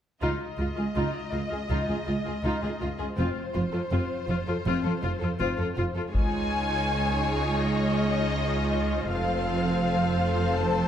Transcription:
0.21 double bass section C#2, cello section C#2, violin section D#4 D#5, viola section F4
0.58 double bass section C#2, cello section C#2, viola section F4, violin section F4
0.75 cello section C#2, viola section F4, violin section G#4
0.95 cello section C#2, double bass section C#2, violin section D#4, viola section F4
1.32 double bass section C#2, cello section C#2, violin section F4, viola section F4
1.50 cello section C#2, viola section F4, violin section G#4
1.69 double bass section C#2, cello section C#2, violin section D#4, viola section F4
1.88 cello section C#2, viola section F4, violin section G#4
2.06 double bass section C#2, cello section C#2, violin section F4, viola section F4
2.25 cello section C#2, viola section F4, violin section G#4
2.44 double bass section C#2, cello section C#2, violin section D#4, viola section F4
2.62 cello section C#2, viola section F4, violin section G#4
2.81 double bass section C#2, cello section C#2, viola section F4, violin section F4
2.98 cello section C#2, viola section F4, violin section G#4
3.16 double bass section F1, cello section F2, violin section C4 C5, viola section F4
3.54 double bass section F1, cello section F2, violin section F4, viola section F4
3.72 cello section F2, viola section F4, violin section A4
3.90 double bass section F1, cello section F2, violin section C4, viola section F4
4.28 double bass section F1, cello section F2, violin section F4, viola section F4
4.47 cello section F2, viola section F4, violin section A4
4.66 double bass section F1, cello section F2, violin section C4, viola section F4
4.84 cello section F2, viola section F4, violin section A4
5.03 double bass section F1, cello section F2, violin section F4, viola section F4
5.20 cello section F2, viola section F4, violin section A4
5.39 double bass section F1, cello section F2, violin section C4, viola section F4
5.57 cello section F2, viola section F4, violin section A4
5.76 double bass section F1, cello section F2, violin section F4, viola section F4
5.94 cello section F2, viola section F4, violin section A4
6.13 cello section C#2, double bass section C#2, viola section D#4 F4, violin section G#4 C#5 G#5, taiko
7.63 violin section D#5
9.11 double bass section F1, cello section F2, viola section C4, violin section A4 C5 F5
10.58 violin section A5

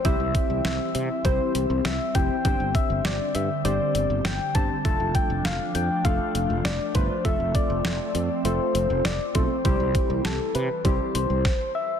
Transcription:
Already playing: analog synth pad C4
0.05 fretless electric bass C2, analog synth pad E3 G3, synth keys C4 E4 G4 C5, soft synth lead E5, kick, closed hi-hat
0.20 fretless electric bass C2
0.35 kick, closed hi-hat
0.50 fretless electric bass C2
0.65 fretless electric bass C2, soft synth lead E5, snare, closed hi-hat
0.95 fretless electric bass C3, closed hi-hat
1.25 fretless electric bass C2, synth keys C4 E4 G4 C5, soft synth lead C5, kick, closed hi-hat
1.55 fretless electric bass C2, closed hi-hat
1.70 fretless electric bass C2
1.85 fretless electric bass C2, soft synth lead E5, snare, closed hi-hat
2.15 fretless electric bass F1, synth keys C4 E4 G4 C5, soft synth lead G5, kick, closed hi-hat
2.45 fretless electric bass G1, analog synth pad D3, synth keys C4 D4 G4 C5, soft synth lead G5, kick, closed hi-hat
2.60 fretless electric bass G1
2.75 soft synth lead E5, kick, closed hi-hat
2.90 fretless electric bass G1
3.05 fretless electric bass G1, soft synth lead D5, snare, closed hi-hat
3.35 fretless electric bass G2, soft synth lead E5, closed hi-hat
3.65 fretless electric bass G1, synth keys C4 D4 G4 C5, soft synth lead D5, closed hi-hat
3.95 fretless electric bass G1, closed hi-hat
4.10 fretless electric bass G1
4.25 fretless electric bass G1, soft synth lead G5, snare, closed hi-hat
4.55 fretless electric bass G1, synth keys C4 D4 G4 C5, soft synth lead A5, kick, closed hi-hat
4.85 fretless electric bass F1, analog synth pad F3 A3 D4, synth keys A3 D4 F4 A4, soft synth lead A5, kick, closed hi-hat
5.00 fretless electric bass F1
5.15 soft synth lead G5, kick, closed hi-hat
5.30 fretless electric bass F1
5.45 fretless electric bass F1, soft synth lead F5, snare, closed hi-hat
5.75 fretless electric bass F2, soft synth lead G5, closed hi-hat
6.05 fretless electric bass F1, synth keys A3 D4 F4 A4, soft synth lead F5, kick, closed hi-hat
6.35 fretless electric bass F1, closed hi-hat
6.50 fretless electric bass F1
6.65 fretless electric bass F1, soft synth lead D5, snare, closed hi-hat
6.95 fretless electric bass G1, synth keys A3 D4 F4 B4, soft synth lead C5, kick, closed hi-hat
7.25 fretless electric bass F1, analog synth pad F3 C4, synth keys A3 C4 F4 A4, soft synth lead E5, kick, closed hi-hat
7.40 fretless electric bass F1
7.55 soft synth lead D5, kick, closed hi-hat
7.70 fretless electric bass F1
7.85 fretless electric bass F1, snare, closed hi-hat
8.15 fretless electric bass F2, closed hi-hat
8.45 fretless electric bass F1, synth keys A3 C4 F4 A4, soft synth lead C5, closed hi-hat
8.75 fretless electric bass F1, closed hi-hat
8.90 fretless electric bass F1
9.05 fretless electric bass F1, soft synth lead D5, snare, closed hi-hat
9.35 fretless electric bass B1, synth keys A3 C4 F4 A4, soft synth lead C5, kick, closed hi-hat
9.65 fretless electric bass C2, analog synth pad E3 G3, synth keys G3 C4 E4 G4, soft synth lead C5, kick, closed hi-hat
9.80 fretless electric bass C2
9.95 kick, closed hi-hat
10.10 fretless electric bass C2
10.25 fretless electric bass C2, soft synth lead A4, snare, closed hi-hat
10.55 fretless electric bass C3, soft synth lead B4, closed hi-hat
10.85 fretless electric bass C2, synth keys G3 C4 E4 G4, soft synth lead C5, kick, closed hi-hat
11.15 fretless electric bass C2, soft synth lead C5, closed hi-hat
11.30 fretless electric bass C2
11.45 kick, snare
11.75 soft synth lead E5

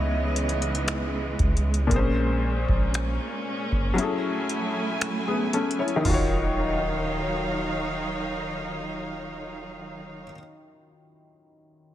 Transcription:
Already playing: 808-style bass C#2, felt piano C#3 B3 D#4 E4 C#5, string section C#3 E3 G#3 B3 D#5
0.36 closed hi-hat
0.49 closed hi-hat
0.62 closed hi-hat
0.75 closed hi-hat
0.88 finger snap, closed hi-hat
1.39 808-style bass C#2, kick, closed hi-hat
1.57 closed hi-hat
1.74 closed hi-hat
1.87 felt piano A#2 A#3
1.91 808-style bass A#1, string section A#3 C#4, felt piano C4 G#4, kick, closed hi-hat
1.96 felt piano C#4 C5
2.69 808-style bass A#1, kick
2.94 finger snap, closed hi-hat
3.72 808-style bass F#1, kick
3.94 felt piano F#3 C#4
3.98 string section F#3 A3 E4 G#5, felt piano E4 G#4, closed hi-hat
4.03 felt piano A4
4.49 closed hi-hat
5.01 finger snap, closed hi-hat
5.28 felt piano B3 G#4
5.53 felt piano C#4 A4, closed hi-hat
5.71 closed hi-hat
5.79 felt piano E4 C#5
5.88 closed hi-hat
5.96 felt piano D#3
6.00 felt piano D#4
6.05 808-style bass D#1, string section D#3 F#3 D#4 C#5 F5, felt piano F4, kick, floor tom, open hi-hat
6.10 felt piano F#4
6.14 felt piano C#5

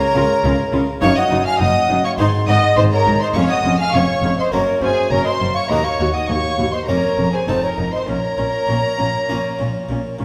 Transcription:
Already playing: harpsichord C#3 A#3 F4 A#4, violin section A#4 A#5, flute C#5
0.15 double bass section C#2, harpsichord C#3, cello section C#3, viola section F4
0.44 double bass section C#2, cello section C#3, harpsichord C#3, viola section F4
0.72 double bass section C#2, cello section C#3, harpsichord C#3, viola section F4
1.01 double bass section F#1, harpsichord F#2 A#3 D#4 A#4, cello section F#2, viola section D#4, violin section C#5 C#6, flute F5
1.16 violin section D#5 D#6, flute F#5
1.31 double bass section F#1, harpsichord F#2, cello section F#2, viola section D#4
1.46 violin section F5 F6, flute G#5
1.60 double bass section F#1, cello section F#2, harpsichord F#2, viola section D#4, violin section D#5 D#6, flute F#5
1.89 double bass section F#1, cello section F#2, harpsichord F#2, viola section D#4
2.05 violin section C#5 C#6, flute F5
2.18 double bass section G#1, harpsichord G#2 G#3 C4 D#4 G#4, cello section G#2, viola section D#4, violin section C5 C6, flute D#5
2.47 double bass section G#1, harpsichord G#2, cello section G#2, viola section D#4, violin section D#5 D#6, flute F#5
2.76 double bass section G#1, harpsichord G#2, cello section G#2, viola section D#4, violin section C5 C6, flute D#5
2.91 violin section A#4 A#5, flute C#5
3.06 double bass section G#1, harpsichord G#2, cello section G#2, viola section D#4
3.21 violin section C5 C6, flute D#5
3.33 double bass section F1, harpsichord F2 G#3 C#4 G#4, cello section F2, viola section C#4, violin section C#5 C#6, flute F5
3.48 violin section D#5 D#6, flute F#5
3.64 double bass section F1, harpsichord F2, cello section F2, viola section C#4
3.78 violin section F5 F6, flute G#5
3.93 double bass section F1, harpsichord F2, cello section F2, viola section C#4, violin section C#5 C#6, flute F5
4.23 double bass section F1, cello section F2, harpsichord F2, viola section C#4
4.38 violin section C5 C6, flute D#5
4.52 double bass section F#1, harpsichord F#2 A#3 C#4 F#4, cello section F#2, viola section C#4, violin section A#4 A#5, flute C#5
4.82 double bass section F#1, harpsichord F#2, cello section F#2, viola section C#4, violin section G#4 G#5, flute C5
5.11 double bass section F#1, cello section F#2, harpsichord F#2, viola section C#4, violin section A#4 A#5, flute C#5
5.24 violin section C5 C6, flute D#5
5.40 double bass section F#1, cello section F#2, harpsichord F#2, viola section C#4
5.54 violin section C#5 C#6, flute F5
5.69 cello section D#2, double bass section D#2, harpsichord D#2 A#3 D#4 F#4, viola section F#4, violin section A#4 A#5, flute D#5
5.84 violin section C#5 C#6, flute F5
6.00 cello section D#2, double bass section D#2, harpsichord D#2, viola section F#4
6.13 violin section D#5 D#6, flute F#5
6.27 double bass section D#2, cello section D#2, harpsichord D#2, viola section F#4, violin section C#5 C#6, flute F5
6.58 cello section D#2, double bass section D#2, harpsichord D#2, viola section F#4
6.72 violin section C5 C6, flute D#5
6.87 double bass section F1, harpsichord F2 A#3 C#4 F4, cello section F2, viola section C#4, violin section A#4 A#5, flute C#5
7.18 double bass section F1, harpsichord F2, cello section F2, viola section C#4
7.33 violin section G#4 G#5, flute C5
7.48 double bass section F1, cello section F2, harpsichord F2 C4 D#4 F4, viola section D#4, violin section A4 A5, flute C5
7.62 violin section A#4 A#5, flute C#5
7.78 double bass section F1, harpsichord F2, cello section F2, viola section D#4
7.93 violin section C5 C6, flute D#5
8.07 double bass section A#1, harpsichord A#2, cello section A#2, viola section C#4, violin section A#4 A#5, flute C#5
8.38 double bass section A#1, harpsichord A#2, cello section A#2, viola section C#4
8.68 double bass section A#1, harpsichord A#2, cello section A#2, viola section C#4
8.99 double bass section A#1, harpsichord A#2, cello section A#2, viola section C#4
9.29 double bass section A#1, harpsichord A#2 A#3 C#4 F4, cello section A#2, viola section C#4
9.59 double bass section A#1, harpsichord A#2, cello section A#2, viola section C#4
9.89 double bass section A#1, harpsichord A#2, cello section A#2, viola section C#4
10.19 double bass section A#1, harpsichord A#2, cello section A#2, viola section C#4

